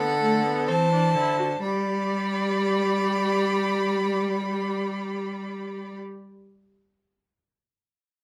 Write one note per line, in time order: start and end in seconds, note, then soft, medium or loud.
0.00 0.69 D3 medium
0.00 0.21 B3 medium
0.00 0.70 A4 loud
0.00 0.68 F#5 loud
0.22 0.44 A3 medium
0.45 0.69 B3 medium
0.68 1.16 E3 loud
0.68 0.91 C4 medium
0.68 1.61 C5 medium
0.68 1.61 A5 loud
0.92 1.15 D4 medium
1.15 1.62 D3 medium
1.15 1.38 E4 medium
1.38 1.46 F#4 medium
1.62 5.97 G3 medium
1.62 5.96 G4 medium
1.62 5.96 D5 medium
1.62 5.96 B5 medium